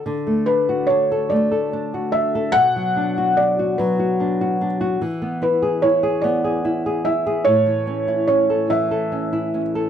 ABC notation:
X:1
M:6/8
L:1/16
Q:3/8=49
K:D
V:1 name="Felt piano"
z2 B2 c2 d4 e2 | f4 d2 B4 z2 | z2 B2 c2 d4 e2 | c4 c2 e4 z2 |]
V:2 name="Nylon-string guitar"
D, A, D F D A A, A D F D A | B,, F, D F D F F, F D F D F | E, B, E ^G E G B, G E G E G | A,, E, C E C A E, A C E C A |]